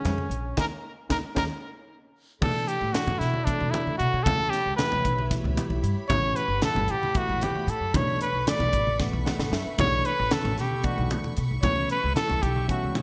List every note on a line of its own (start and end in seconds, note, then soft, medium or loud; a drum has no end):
0.00 0.28 D#3 medium
0.00 0.28 G#3 medium
0.00 0.28 C#4 medium
0.00 0.58 C#4 medium
0.00 0.28 G#4 medium
0.05 0.26 F2 medium
0.05 snare soft
0.05 closed hi-hat medium
0.05 muted conga medium
0.05 low conga medium
0.18 high conga medium
0.30 0.51 A#1 medium
0.30 closed hi-hat medium
0.57 0.67 D#2 medium
0.57 0.66 A#3 medium
0.57 0.66 C#4 medium
0.57 0.66 D#4 medium
0.57 0.66 A#4 medium
0.57 kick medium
0.57 snare medium
0.57 muted conga medium
1.09 1.20 D#2 medium
1.09 1.18 A#3 medium
1.09 1.18 C#4 medium
1.09 1.18 D#4 medium
1.09 1.17 A#4 medium
1.09 kick medium
1.09 snare medium
1.09 muted conga medium
1.35 1.46 D#2 medium
1.35 1.44 A#3 medium
1.35 1.44 C#4 medium
1.35 1.44 D#4 medium
1.35 1.44 A#4 medium
1.35 kick medium
1.35 snare medium
1.35 muted conga loud
2.41 2.74 B2 medium
2.41 2.63 B2 medium
2.41 2.75 E3 medium
2.41 2.75 A3 medium
2.41 2.75 D4 medium
2.41 4.24 A4 medium
2.41 2.69 A4 medium
2.41 7.91 C#5 medium
2.41 4.25 D5 medium
2.41 13.02 B5 medium
2.41 kick loud
2.41 crash medium
2.41 muted conga medium
2.41 high conga medium
2.41 low conga medium
2.68 2.94 G4 medium
2.68 closed hi-hat medium
2.81 2.92 A2 medium
2.81 low conga soft
2.93 3.27 B2 medium
2.93 3.27 E3 medium
2.93 3.27 A3 medium
2.93 3.27 D4 medium
2.93 3.20 F#4 medium
2.93 snare loud
2.93 closed hi-hat medium
2.93 high conga medium
3.07 3.18 A2 medium
3.07 muted conga medium
3.07 low conga medium
3.19 3.52 B2 medium
3.19 3.46 E4 medium
3.19 snare soft
3.19 closed hi-hat medium
3.34 high conga medium
3.45 3.95 B2 medium
3.45 3.95 E3 medium
3.45 3.96 A3 medium
3.45 3.72 D4 medium
3.45 3.96 D4 medium
3.45 kick medium
3.45 closed hi-hat medium
3.60 3.81 B2 medium
3.60 low conga medium
3.70 3.97 E4 medium
3.70 closed hi-hat medium
3.70 muted conga medium
3.86 muted upright bass stroke soft
3.86 high conga medium
3.86 low conga soft
3.98 4.10 B2 medium
3.98 4.25 F#4 medium
3.98 closed hi-hat medium
4.13 4.24 B2 medium
4.23 4.47 C#2 medium
4.23 4.59 B2 medium
4.23 4.59 E3 medium
4.23 4.59 A3 medium
4.23 4.59 C#4 medium
4.23 7.91 G4 medium
4.23 4.52 A4 loud
4.23 6.09 E5 medium
4.23 kick loud
4.23 closed hi-hat medium
4.23 muted conga loud
4.23 high conga loud
4.23 low conga loud
4.50 4.76 G4 loud
4.50 snare soft
4.50 closed hi-hat medium
4.66 4.76 C#2 medium
4.66 low conga soft
4.76 5.11 B2 medium
4.76 5.11 E3 medium
4.76 5.11 A3 medium
4.76 5.11 B3 medium
4.76 5.33 B4 medium
4.76 snare medium
4.76 closed hi-hat medium
4.76 high conga medium
4.92 5.03 C#2 medium
4.92 muted conga medium
4.92 low conga medium
5.05 5.36 B1 medium
5.05 kick medium
5.05 closed hi-hat medium
5.18 high conga medium
5.30 5.80 B2 medium
5.30 5.80 E3 medium
5.30 5.80 A3 medium
5.30 5.80 E4 medium
5.30 kick medium
5.30 snare soft
5.30 closed hi-hat medium
5.44 5.55 C#2 medium
5.44 low conga medium
5.57 closed hi-hat medium
5.57 muted conga medium
5.70 5.81 B1 medium
5.70 high conga medium
5.70 low conga soft
5.83 5.94 G2 medium
5.83 closed hi-hat medium
5.97 muted upright bass stroke soft
6.09 6.31 A1 medium
6.09 6.43 B2 medium
6.09 6.43 E3 medium
6.09 6.43 A3 medium
6.09 6.43 C#4 medium
6.09 6.38 C#5 loud
6.09 7.93 F#5 medium
6.09 kick loud
6.09 closed hi-hat medium
6.09 muted conga loud
6.09 high conga loud
6.09 low conga loud
6.36 6.63 B4 medium
6.36 closed hi-hat medium
6.48 6.59 G1 medium
6.48 low conga soft
6.62 6.95 B2 medium
6.62 6.95 E3 medium
6.62 6.95 A3 medium
6.62 6.95 E4 medium
6.62 6.92 A4 medium
6.62 snare loud
6.62 closed hi-hat medium
6.62 high conga medium
6.75 6.86 G1 medium
6.75 muted conga medium
6.75 low conga medium
6.88 7.20 A2 medium
6.88 7.19 G4 medium
6.88 closed hi-hat medium
7.03 high conga medium
7.14 7.64 B2 medium
7.14 7.64 E3 medium
7.14 7.64 A3 medium
7.14 7.65 E4 medium
7.14 7.44 F#4 medium
7.14 kick loud
7.14 closed hi-hat medium
7.28 7.49 A1 medium
7.28 low conga medium
7.41 7.71 G4 medium
7.41 closed hi-hat medium
7.41 muted conga medium
7.55 muted upright bass stroke soft
7.55 high conga medium
7.55 low conga soft
7.67 7.78 A2 loud
7.67 7.97 A4 medium
7.67 closed hi-hat medium
7.80 7.91 F#2 medium
7.93 8.15 B1 medium
7.93 8.27 B2 medium
7.93 8.27 E3 medium
7.93 8.27 A3 medium
7.93 8.27 D4 medium
7.93 11.59 A4 medium
7.93 11.59 B4 medium
7.93 8.21 C#5 medium
7.93 13.02 C#6 medium
7.93 kick loud
7.93 closed hi-hat medium
7.93 muted conga medium
7.93 high conga loud
7.93 low conga medium
8.21 8.50 B4 medium
8.21 closed hi-hat medium
8.21 low conga soft
8.33 8.44 B1 medium
8.33 low conga soft
8.46 8.79 B2 medium
8.46 8.80 E3 medium
8.46 8.79 A3 medium
8.46 8.80 B3 medium
8.46 9.07 D5 loud
8.46 snare loud
8.46 closed hi-hat medium
8.46 high conga medium
8.59 8.70 B1 medium
8.59 muted conga medium
8.59 low conga medium
8.73 9.05 A1 medium
8.73 kick medium
8.73 closed hi-hat medium
8.73 low conga soft
8.87 high conga medium
8.87 low conga soft
8.99 9.49 B2 medium
8.99 9.49 E3 medium
8.99 9.49 A3 medium
8.99 9.49 B3 medium
8.99 kick medium
8.99 snare soft
9.13 9.23 B1 medium
9.13 low conga medium
9.25 9.50 F#5 medium
9.25 snare medium
9.25 muted conga medium
9.38 9.49 A1 medium
9.38 snare medium
9.38 high conga medium
9.38 low conga soft
9.52 9.62 F#2 loud
9.52 9.77 E5 medium
9.52 snare medium
9.66 muted upright bass stroke soft
9.66 low conga soft
9.78 9.99 B1 medium
9.78 10.11 B2 medium
9.78 10.11 E3 medium
9.78 10.11 A3 medium
9.78 10.11 D4 medium
9.78 10.07 C#5 loud
9.78 kick loud
9.78 closed hi-hat medium
9.78 muted conga loud
9.78 high conga loud
9.78 low conga loud
10.05 10.34 B4 loud
10.05 closed hi-hat medium
10.19 10.29 A1 medium
10.19 low conga soft
10.30 10.64 B2 medium
10.30 10.64 E3 soft
10.30 10.64 A3 medium
10.30 10.64 C#4 medium
10.30 10.58 A4 medium
10.30 snare loud
10.30 closed hi-hat medium
10.30 high conga medium
10.45 10.55 A1 medium
10.45 muted conga medium
10.45 low conga medium
10.58 10.89 B2 medium
10.58 10.86 G4 medium
10.58 snare soft
10.58 closed hi-hat medium
10.71 high conga medium
10.83 11.33 B2 medium
10.83 11.33 E3 medium
10.83 11.33 A3 medium
10.83 11.33 D4 medium
10.83 11.11 F#4 medium
10.83 kick medium
10.83 closed hi-hat medium
10.98 11.18 B1 medium
10.98 low conga medium
11.10 closed hi-hat medium
11.10 muted conga medium
11.24 muted upright bass stroke soft
11.24 high conga medium
11.24 low conga soft
11.37 11.48 B2 medium
11.37 closed hi-hat medium
11.51 11.61 B1 medium
11.62 11.84 C#2 medium
11.62 11.96 B2 medium
11.62 11.96 E3 medium
11.62 13.02 G3 medium
11.62 11.96 A3 medium
11.62 11.96 C#4 medium
11.62 11.87 C#5 loud
11.62 13.02 E5 medium
11.62 kick medium
11.62 closed hi-hat medium
11.62 muted conga medium
11.62 high conga medium
11.62 low conga medium
11.89 12.15 B4 medium
11.89 closed hi-hat medium
12.03 12.14 C#2 medium
12.03 low conga soft
12.16 12.49 B2 medium
12.16 12.49 E3 medium
12.16 12.49 A3 medium
12.16 12.49 E4 medium
12.16 12.44 A4 loud
12.16 snare loud
12.16 closed hi-hat medium
12.16 high conga medium
12.30 12.40 C#2 medium
12.30 muted conga medium
12.30 low conga medium
12.42 12.73 B1 medium
12.42 12.69 G4 medium
12.42 kick medium
12.42 closed hi-hat medium
12.56 high conga medium
12.68 13.02 B2 medium
12.68 13.02 E3 medium
12.68 13.02 A3 medium
12.68 13.02 C#4 medium
12.68 12.94 F#4 medium
12.68 kick medium
12.68 closed hi-hat medium
12.83 12.93 C#2 medium
12.95 closed hi-hat medium
12.95 muted conga medium